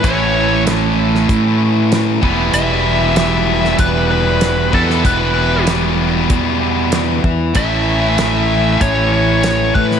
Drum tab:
HH |x---x---x---x---|x---x---x---x---|x---x---x---x---|x---x---x---x---|
SD |----o--o----o---|----o--o----o--o|----o-------o---|----o-------o--o|
BD |o-------o-----o-|--------o-----o-|o-------o-----o-|o-------o-----o-|